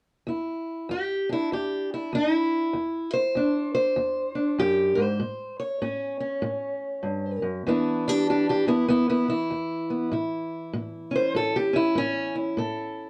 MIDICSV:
0, 0, Header, 1, 2, 480
1, 0, Start_track
1, 0, Tempo, 614754
1, 218, Time_signature, 4, 2, 24, 8
1, 10226, End_track
2, 0, Start_track
2, 0, Title_t, "Steel-string acoustic guitar"
2, 0, Program_c, 0, 25
2, 209, Note_on_c, 0, 40, 62
2, 222, Note_on_c, 0, 64, 38
2, 657, Note_off_c, 0, 40, 0
2, 696, Note_on_c, 0, 40, 67
2, 708, Note_off_c, 0, 64, 0
2, 711, Note_on_c, 0, 67, 87
2, 1011, Note_on_c, 0, 62, 41
2, 1026, Note_off_c, 0, 67, 0
2, 1036, Note_on_c, 0, 64, 77
2, 1142, Note_off_c, 0, 40, 0
2, 1188, Note_off_c, 0, 64, 0
2, 1189, Note_on_c, 0, 40, 64
2, 1198, Note_on_c, 0, 67, 70
2, 1510, Note_off_c, 0, 67, 0
2, 1514, Note_on_c, 0, 64, 59
2, 1628, Note_off_c, 0, 40, 0
2, 1661, Note_on_c, 0, 40, 68
2, 1668, Note_off_c, 0, 64, 0
2, 1679, Note_on_c, 0, 63, 92
2, 1811, Note_off_c, 0, 63, 0
2, 1811, Note_on_c, 0, 64, 92
2, 2105, Note_off_c, 0, 40, 0
2, 2128, Note_off_c, 0, 62, 0
2, 2133, Note_on_c, 0, 40, 62
2, 2445, Note_off_c, 0, 64, 0
2, 2448, Note_on_c, 0, 72, 82
2, 2581, Note_off_c, 0, 40, 0
2, 2617, Note_on_c, 0, 40, 61
2, 2631, Note_on_c, 0, 62, 46
2, 2916, Note_off_c, 0, 72, 0
2, 2925, Note_on_c, 0, 72, 87
2, 3064, Note_off_c, 0, 40, 0
2, 3093, Note_on_c, 0, 40, 67
2, 3388, Note_off_c, 0, 62, 0
2, 3398, Note_on_c, 0, 62, 39
2, 3542, Note_off_c, 0, 40, 0
2, 3579, Note_on_c, 0, 42, 52
2, 3588, Note_off_c, 0, 72, 0
2, 3588, Note_on_c, 0, 67, 84
2, 3866, Note_on_c, 0, 72, 77
2, 3877, Note_off_c, 0, 42, 0
2, 3881, Note_off_c, 0, 67, 0
2, 3882, Note_on_c, 0, 44, 56
2, 4042, Note_off_c, 0, 62, 0
2, 4057, Note_on_c, 0, 45, 68
2, 4066, Note_off_c, 0, 44, 0
2, 4354, Note_off_c, 0, 72, 0
2, 4369, Note_on_c, 0, 73, 72
2, 4504, Note_off_c, 0, 45, 0
2, 4541, Note_on_c, 0, 45, 73
2, 4543, Note_on_c, 0, 61, 40
2, 4834, Note_off_c, 0, 61, 0
2, 4843, Note_on_c, 0, 61, 44
2, 4987, Note_off_c, 0, 45, 0
2, 5011, Note_on_c, 0, 45, 75
2, 5462, Note_off_c, 0, 45, 0
2, 5487, Note_on_c, 0, 43, 52
2, 5792, Note_off_c, 0, 43, 0
2, 5795, Note_on_c, 0, 42, 52
2, 5807, Note_off_c, 0, 73, 0
2, 5982, Note_off_c, 0, 42, 0
2, 5985, Note_on_c, 0, 40, 69
2, 5989, Note_off_c, 0, 61, 0
2, 5989, Note_on_c, 0, 52, 42
2, 5997, Note_on_c, 0, 59, 44
2, 6000, Note_on_c, 0, 62, 46
2, 6003, Note_on_c, 0, 64, 46
2, 6298, Note_off_c, 0, 62, 0
2, 6307, Note_on_c, 0, 62, 79
2, 6317, Note_off_c, 0, 64, 0
2, 6317, Note_on_c, 0, 67, 83
2, 6430, Note_off_c, 0, 40, 0
2, 6468, Note_off_c, 0, 62, 0
2, 6472, Note_off_c, 0, 67, 0
2, 6477, Note_on_c, 0, 40, 61
2, 6480, Note_on_c, 0, 62, 79
2, 6482, Note_on_c, 0, 67, 71
2, 6622, Note_off_c, 0, 62, 0
2, 6627, Note_off_c, 0, 67, 0
2, 6631, Note_on_c, 0, 62, 69
2, 6636, Note_on_c, 0, 67, 80
2, 6757, Note_off_c, 0, 52, 0
2, 6767, Note_off_c, 0, 59, 0
2, 6767, Note_on_c, 0, 52, 39
2, 6775, Note_on_c, 0, 59, 65
2, 6777, Note_off_c, 0, 67, 0
2, 6781, Note_on_c, 0, 64, 81
2, 6789, Note_off_c, 0, 62, 0
2, 6916, Note_off_c, 0, 40, 0
2, 6928, Note_off_c, 0, 59, 0
2, 6937, Note_off_c, 0, 64, 0
2, 6937, Note_on_c, 0, 59, 74
2, 6947, Note_on_c, 0, 40, 69
2, 6949, Note_on_c, 0, 64, 83
2, 7092, Note_off_c, 0, 64, 0
2, 7095, Note_off_c, 0, 59, 0
2, 7102, Note_on_c, 0, 64, 77
2, 7104, Note_on_c, 0, 59, 69
2, 7236, Note_off_c, 0, 52, 0
2, 7245, Note_on_c, 0, 52, 33
2, 7249, Note_off_c, 0, 64, 0
2, 7258, Note_on_c, 0, 64, 82
2, 7266, Note_off_c, 0, 59, 0
2, 7391, Note_off_c, 0, 40, 0
2, 7421, Note_on_c, 0, 40, 64
2, 7731, Note_on_c, 0, 59, 39
2, 7867, Note_off_c, 0, 40, 0
2, 7890, Note_off_c, 0, 59, 0
2, 7898, Note_on_c, 0, 45, 69
2, 7899, Note_off_c, 0, 64, 0
2, 7908, Note_on_c, 0, 64, 46
2, 8345, Note_off_c, 0, 45, 0
2, 8381, Note_on_c, 0, 45, 75
2, 8674, Note_on_c, 0, 61, 46
2, 8707, Note_off_c, 0, 64, 0
2, 8710, Note_on_c, 0, 72, 88
2, 8826, Note_off_c, 0, 45, 0
2, 8858, Note_on_c, 0, 45, 74
2, 8868, Note_off_c, 0, 72, 0
2, 8871, Note_on_c, 0, 69, 90
2, 9025, Note_on_c, 0, 67, 75
2, 9028, Note_off_c, 0, 69, 0
2, 9157, Note_off_c, 0, 61, 0
2, 9160, Note_on_c, 0, 61, 43
2, 9181, Note_on_c, 0, 64, 77
2, 9184, Note_off_c, 0, 67, 0
2, 9304, Note_off_c, 0, 45, 0
2, 9332, Note_on_c, 0, 45, 79
2, 9343, Note_off_c, 0, 64, 0
2, 9353, Note_off_c, 0, 61, 0
2, 9353, Note_on_c, 0, 61, 104
2, 9642, Note_off_c, 0, 61, 0
2, 9645, Note_on_c, 0, 64, 44
2, 9780, Note_off_c, 0, 45, 0
2, 9814, Note_on_c, 0, 45, 75
2, 9824, Note_off_c, 0, 52, 0
2, 9825, Note_on_c, 0, 69, 52
2, 10226, Note_off_c, 0, 45, 0
2, 10226, Note_off_c, 0, 64, 0
2, 10226, Note_off_c, 0, 69, 0
2, 10226, End_track
0, 0, End_of_file